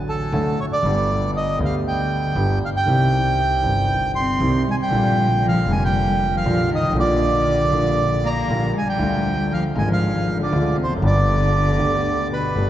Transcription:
0.00 0.29 A1 medium
0.00 0.29 A2 medium
0.00 0.28 D3 medium
0.00 0.28 F#3 soft
0.00 0.29 A3 soft
0.00 0.30 F#4 medium
0.09 0.60 A4 medium
0.32 0.54 D2 medium
0.32 0.54 D3 medium
0.32 0.54 F#3 medium
0.32 0.54 A3 medium
0.32 0.54 F#4 medium
0.60 0.66 C#5 medium
0.73 1.31 D5 medium
0.83 1.55 G1 medium
0.83 1.57 G1 medium
0.83 1.56 G2 medium
0.83 1.56 D3 medium
0.83 1.56 G3 medium
0.83 1.57 B3 medium
0.88 1.58 G4 medium
1.36 1.59 D#5 medium
1.59 2.32 D2 medium
1.59 2.33 D3 medium
1.59 2.32 G3 soft
1.59 2.33 B3 soft
1.59 2.33 G4 medium
1.65 1.75 F5 medium
1.88 2.59 G5 medium
2.35 2.57 G1 medium
2.35 2.57 G2 medium
2.35 2.57 D3 medium
2.35 2.57 G3 medium
2.35 2.57 B3 soft
2.35 2.57 G4 medium
2.65 2.70 F5 medium
2.77 4.12 G5 medium
2.85 3.59 C2 medium
2.85 3.60 C2 medium
2.85 3.60 C3 medium
2.85 3.59 D#3 medium
2.85 3.59 G3 medium
2.85 3.60 C4 medium
2.85 3.61 G4 medium
3.61 4.36 G1 medium
3.61 4.37 G1 medium
3.61 4.36 G2 medium
3.61 4.35 D#3 soft
3.61 4.36 G3 soft
3.61 4.37 C4 soft
3.66 4.38 G4 medium
4.16 4.63 C4 medium
4.16 4.63 C6 medium
4.40 4.61 C2 medium
4.40 4.62 C2 medium
4.40 4.62 C3 medium
4.40 4.62 D#3 medium
4.40 4.62 G3 soft
4.40 4.62 C4 soft
4.40 4.62 G4 medium
4.67 4.72 G#3 medium
4.71 4.76 G#5 medium
4.79 5.39 G3 medium
4.79 5.47 G5 medium
4.90 5.64 A#1 medium
4.90 5.65 A#2 medium
4.90 5.64 D3 medium
4.90 5.64 G3 medium
4.90 5.65 A#3 soft
4.94 5.66 F4 medium
5.43 5.67 F3 medium
5.48 5.72 F5 medium
5.66 6.40 F1 medium
5.66 6.41 F1 medium
5.66 6.41 F2 medium
5.66 6.40 D3 medium
5.66 6.41 G3 soft
5.66 5.80 G#3 medium
5.66 6.42 A#3 soft
5.66 6.42 F4 medium
5.72 5.83 G#5 medium
5.81 6.29 G3 medium
5.81 6.36 G5 medium
6.34 6.69 F3 medium
6.34 6.70 F5 medium
6.44 6.66 A#1 medium
6.44 6.67 A#1 medium
6.44 6.67 A#2 medium
6.44 6.67 D3 medium
6.44 6.67 G3 medium
6.44 6.67 A#3 medium
6.44 6.67 F4 medium
6.72 6.95 D#3 medium
6.72 6.97 D#5 medium
6.77 6.81 G1 soft
6.77 6.83 G1 soft
6.81 6.86 G#1 soft
6.81 6.90 G#1 medium
6.86 6.92 A1 medium
6.86 6.96 A1 medium
6.93 7.67 A#1 medium
6.93 7.69 A#1 medium
6.93 7.69 A#2 medium
6.93 7.68 D3 medium
6.93 8.19 D3 medium
6.93 7.69 G3 medium
6.97 7.69 A#3 medium
6.97 7.70 F4 medium
6.97 8.29 D5 medium
7.70 8.43 A#1 medium
7.70 8.45 A#1 medium
7.70 8.45 A#2 medium
7.70 8.44 D3 medium
7.70 8.45 G3 soft
7.70 8.45 A#3 soft
7.75 8.46 F4 medium
8.24 8.71 A#3 medium
8.24 8.72 A#5 medium
8.48 8.70 A#1 medium
8.48 8.71 A#1 medium
8.48 8.71 A#2 medium
8.48 8.70 D3 medium
8.48 8.70 G3 medium
8.48 8.70 A#3 medium
8.48 8.71 F4 medium
8.74 8.86 G#3 medium
8.78 8.88 G#5 medium
8.88 9.47 G3 medium
8.88 9.53 G5 medium
8.97 9.71 D2 medium
8.97 9.72 D2 medium
8.97 9.72 D3 medium
8.97 9.71 F3 medium
8.97 9.72 F4 medium
9.52 9.63 F3 medium
9.52 9.64 F5 medium
9.74 10.48 G#1 medium
9.74 10.48 G#2 medium
9.74 10.47 D3 medium
9.74 10.48 F3 soft
9.74 9.87 G#3 medium
9.74 10.49 G#3 medium
9.78 10.49 F4 medium
9.78 9.89 G#5 medium
9.88 10.35 F3 medium
9.93 10.38 F5 medium
10.38 10.74 D3 medium
10.43 10.77 D5 medium
10.52 10.73 D2 medium
10.52 10.74 D2 medium
10.52 10.74 D3 medium
10.52 10.74 F3 medium
10.52 10.74 G#3 medium
10.52 10.74 F4 medium
10.75 10.87 C3 medium
10.84 10.90 E1 soft
10.84 10.90 E2 soft
10.84 10.94 C5 medium
10.90 10.96 F1 soft
10.90 10.96 F2 medium
10.96 11.02 F#1 medium
10.96 11.03 F#2 medium
11.01 11.75 G1 medium
11.01 11.76 G1 medium
11.01 11.76 G2 medium
11.01 12.25 D3 medium
11.01 11.74 D3 medium
11.01 11.75 G3 medium
11.01 11.76 B3 medium
11.05 11.76 G4 medium
11.05 12.28 D5 medium
11.76 12.52 D2 medium
11.76 11.77 D3 medium
11.76 12.52 D3 medium
11.76 12.51 G3 soft
11.76 12.52 B3 soft
11.81 12.53 G4 medium
12.30 12.70 B2 soft
12.30 12.70 B4 medium
12.56 12.70 G1 medium
12.56 12.70 G2 medium
12.56 12.70 D3 medium
12.56 12.70 G3 medium
12.56 12.70 B3 soft
12.56 12.70 G4 medium

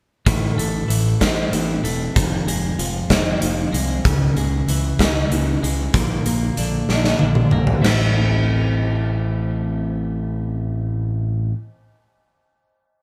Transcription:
0.26 0.50 A1 medium
0.26 1.85 A2 medium
0.26 kick loud
0.26 closed hi-hat medium
0.58 0.82 A1 medium
0.58 1.83 A3 medium
0.58 closed hi-hat medium
0.88 1.14 A1 medium
0.88 1.52 E3 medium
0.88 closed hi-hat medium
1.20 1.45 A1 medium
1.20 2.16 C4 medium
1.20 kick medium
1.20 snare medium
1.20 closed hi-hat medium
1.53 1.77 A1 medium
1.53 2.16 E3 medium
1.53 closed hi-hat medium
1.84 2.08 E1 medium
1.84 2.16 A3 medium
1.84 closed hi-hat medium
2.16 2.40 F1 medium
2.16 3.73 F2 medium
2.16 kick loud
2.16 closed hi-hat medium
2.47 2.71 F1 medium
2.47 3.71 G#3 medium
2.47 closed hi-hat medium
2.79 3.03 F1 medium
2.79 3.40 F3 medium
2.79 closed hi-hat medium
3.10 3.34 F1 medium
3.10 4.05 C4 medium
3.10 kick medium
3.10 snare loud
3.10 closed hi-hat medium
3.41 3.66 F1 medium
3.41 4.05 F3 medium
3.41 closed hi-hat medium
3.73 3.97 C2 medium
3.73 4.05 G#3 medium
3.73 closed hi-hat medium
4.05 4.29 C#2 medium
4.05 5.62 C#3 medium
4.05 kick loud
4.05 closed hi-hat medium
4.36 4.60 C#2 medium
4.36 5.62 G#3 medium
4.36 closed hi-hat medium
4.67 4.91 C#2 medium
4.67 5.31 E3 medium
4.67 closed hi-hat medium
4.99 5.23 C#2 medium
4.99 5.95 C#4 medium
4.99 kick medium
4.99 snare medium
4.99 closed hi-hat medium
5.31 5.55 C#2 medium
5.31 5.95 E3 medium
5.31 closed hi-hat medium
5.63 5.87 C#2 medium
5.63 5.94 G#3 medium
5.63 closed hi-hat medium
5.94 6.18 A#1 medium
5.94 7.52 A#2 medium
5.94 kick loud
5.94 closed hi-hat medium
6.26 6.49 A#1 medium
6.26 7.51 A#3 medium
6.26 closed hi-hat medium
6.57 6.81 A#1 medium
6.57 7.20 D3 medium
6.57 closed hi-hat medium
6.89 7.12 A#1 medium
6.89 7.84 D4 medium
6.89 snare soft
7.04 snare medium
7.19 7.45 A#1 medium
7.19 7.82 D3 medium
7.19 high tom medium
7.35 mid tom medium
7.51 7.76 A#1 medium
7.51 7.83 A#3 medium
7.51 mid tom medium
7.67 floor tom medium
7.82 11.52 A1 medium
7.82 11.52 A2 medium
7.82 11.53 E3 medium
7.82 11.54 A3 medium
7.82 11.55 C4 loud
7.82 snare medium
7.82 crash medium
7.86 11.56 E4 loud

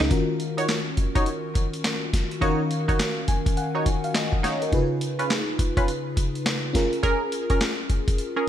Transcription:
0.00 0.08 C#2 loud
0.00 0.10 C#4 medium
0.00 0.08 D#4 medium
0.00 0.11 F4 medium
0.00 0.13 G#4 medium
0.00 0.12 A#4 loud
0.00 snare medium
0.00 closed hi-hat soft
0.10 2.37 D#3 medium
0.10 2.38 C#4 medium
0.10 2.38 F4 medium
0.10 2.38 F#4 medium
0.10 2.38 A#4 medium
0.10 kick loud
0.10 closed hi-hat medium
0.40 closed hi-hat medium
0.57 0.71 D#4 medium
0.57 0.71 F#4 medium
0.57 0.71 C#5 medium
0.57 closed hi-hat medium
0.69 snare loud
0.69 clap medium
0.69 closed hi-hat medium
0.97 kick medium
0.97 closed hi-hat medium
1.15 1.29 D#4 medium
1.15 1.29 F#4 medium
1.15 1.29 C#5 medium
1.15 kick loud
1.15 closed hi-hat medium
1.26 closed hi-hat medium
1.55 kick medium
1.55 closed hi-hat medium
1.73 closed hi-hat soft
1.84 snare loud
1.84 clap medium
1.84 closed hi-hat medium
2.13 kick medium
2.13 snare medium
2.13 closed hi-hat medium
2.31 closed hi-hat soft
2.41 4.68 D#3 medium
2.41 4.68 C#4 medium
2.41 2.61 D#4 medium
2.41 2.61 F#4 medium
2.41 4.69 F#4 medium
2.41 4.12 A#4 medium
2.41 2.61 C#5 loud
2.41 4.03 F5 medium
2.41 kick loud
2.41 closed hi-hat medium
2.71 closed hi-hat medium
2.88 3.02 D#4 medium
2.88 3.02 F#4 medium
2.88 3.02 C#5 medium
2.88 kick medium
2.88 closed hi-hat medium
2.99 snare loud
2.99 clap medium
2.99 closed hi-hat medium
3.28 3.55 G#5 medium
3.28 kick medium
3.28 closed hi-hat medium
3.46 kick loud
3.46 closed hi-hat medium
3.57 4.01 F#5 medium
3.57 closed hi-hat medium
3.75 3.88 D#4 medium
3.75 3.88 F#4 medium
3.75 3.89 C#5 medium
3.86 kick medium
3.86 closed hi-hat medium
4.04 4.14 F5 medium
4.04 closed hi-hat soft
4.14 4.69 D#5 medium
4.14 snare loud
4.14 clap medium
4.14 closed hi-hat medium
4.33 kick medium
4.43 4.63 D#4 medium
4.43 4.63 F#4 medium
4.43 4.63 C#5 medium
4.43 4.61 C#5 medium
4.43 snare medium
4.43 closed hi-hat medium
4.62 4.89 A#4 medium
4.62 closed hi-hat soft
4.72 6.70 C#3 medium
4.72 6.70 D#4 medium
4.72 6.71 F4 medium
4.72 6.71 G#4 medium
4.72 6.71 B4 medium
4.72 kick loud
4.72 closed hi-hat medium
5.01 closed hi-hat medium
5.19 5.33 C#4 medium
5.19 5.33 F4 medium
5.19 5.33 B4 medium
5.19 closed hi-hat medium
5.30 snare loud
5.30 clap medium
5.30 closed hi-hat medium
5.59 kick medium
5.59 closed hi-hat medium
5.77 5.90 C#4 medium
5.77 5.91 F4 medium
5.77 5.91 B4 medium
5.77 kick loud
5.77 closed hi-hat medium
5.88 closed hi-hat medium
6.17 kick medium
6.17 closed hi-hat medium
6.35 closed hi-hat soft
6.46 snare loud
6.46 clap medium
6.46 closed hi-hat medium
6.73 8.44 C#4 medium
6.73 8.44 F4 medium
6.73 8.44 G#4 medium
6.73 8.45 A#4 medium
6.73 kick medium
6.73 snare medium
6.73 closed hi-hat medium
6.93 closed hi-hat soft
7.03 7.23 C#4 medium
7.03 7.23 G#4 medium
7.03 7.23 A#4 loud
7.03 kick loud
7.03 closed hi-hat medium
7.32 closed hi-hat medium
7.50 7.64 C#4 medium
7.50 7.64 G#4 medium
7.50 7.64 A#4 medium
7.50 kick medium
7.50 closed hi-hat medium
7.61 snare loud
7.61 clap medium
7.61 closed hi-hat medium
7.90 kick medium
7.90 closed hi-hat medium
8.08 kick loud
8.08 closed hi-hat medium
8.18 closed hi-hat medium
8.36 8.49 C#4 medium
8.36 8.49 G#4 medium
8.36 8.49 A#4 medium

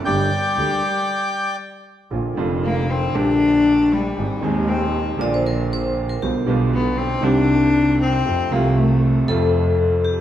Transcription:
0.05 0.27 G1 medium
0.05 0.28 G1 medium
0.05 0.27 G2 medium
0.05 0.27 D3 medium
0.05 0.27 G3 medium
0.05 1.56 G3 medium
0.05 0.27 A#3 medium
0.05 0.27 G4 medium
0.05 1.56 D5 medium
0.05 1.56 G5 medium
0.57 0.79 D2 medium
0.57 0.79 D3 medium
0.57 0.79 G3 soft
0.57 0.79 A#3 soft
0.57 0.79 G4 soft
2.11 2.33 A#1 medium
2.11 2.33 A#2 soft
2.11 2.33 D3 soft
2.11 2.33 F3 soft
2.11 2.33 A#3 soft
2.11 2.33 F4 soft
2.35 3.11 F1 medium
2.35 3.11 F2 medium
2.35 3.10 D3 medium
2.35 3.10 F3 medium
2.35 3.11 A#3 medium
2.39 3.12 F4 medium
2.64 2.91 A#3 medium
2.90 3.17 C4 medium
3.13 4.12 A#1 medium
3.13 4.12 A#2 medium
3.13 4.11 D3 medium
3.13 4.12 G3 medium
3.13 4.12 A#3 medium
3.13 3.93 D4 loud
3.13 4.13 G4 medium
3.92 4.45 G3 medium
4.16 4.38 G#1 soft
4.16 4.39 G#1 medium
4.16 4.38 G#2 soft
4.16 4.38 D#3 soft
4.16 4.39 G#3 soft
4.16 4.38 C4 soft
4.16 4.39 G#4 soft
4.41 5.16 D#1 medium
4.41 5.16 D#2 medium
4.41 5.15 D#3 medium
4.41 5.15 G#3 medium
4.41 4.69 G#3 medium
4.41 5.16 C4 medium
4.41 5.17 G#4 medium
4.68 5.19 C4 medium
5.17 6.16 A#1 medium
5.17 6.17 A#1 medium
5.17 6.16 A#2 medium
5.17 6.15 D3 medium
5.17 6.16 F3 medium
5.17 6.17 A#3 medium
5.21 6.17 F4 medium
5.21 5.34 D5 medium
5.34 5.40 C5 medium
5.47 5.72 A#4 medium
5.73 6.11 C5 medium
6.09 6.21 A#4 medium
6.22 6.44 B1 medium
6.22 6.44 B2 medium
6.22 6.44 D3 soft
6.22 6.44 G3 soft
6.22 6.44 B3 soft
6.22 6.44 F4 soft
6.22 6.58 G4 medium
6.46 7.20 B1 medium
6.46 7.20 B2 medium
6.46 7.19 D3 medium
6.46 7.20 G3 medium
6.46 7.21 B3 medium
6.46 7.21 F4 medium
6.74 6.99 B3 medium
6.98 7.25 C4 medium
7.21 8.20 C2 medium
7.21 8.21 C2 loud
7.21 8.20 C3 medium
7.21 8.20 D#3 medium
7.21 8.20 G3 medium
7.21 8.21 C4 medium
7.21 8.00 D4 loud
7.21 8.21 G4 medium
8.01 8.53 C4 medium
8.25 8.47 F2 soft
8.25 8.48 F2 medium
8.25 8.47 C3 soft
8.25 8.47 F3 medium
8.25 8.48 A3 soft
8.25 8.48 F4 soft
8.50 9.25 C2 medium
8.50 8.51 C3 medium
8.50 9.25 C3 medium
8.50 9.25 F3 medium
8.50 9.26 A3 medium
8.50 8.79 A#3 medium
8.50 9.26 F4 medium
8.77 9.29 A3 medium
9.26 10.21 F2 medium
9.26 10.21 C3 medium
9.26 10.21 F3 medium
9.26 10.21 A3 medium
9.26 10.02 A4 medium
9.31 10.21 F4 medium
10.04 10.21 G4 medium

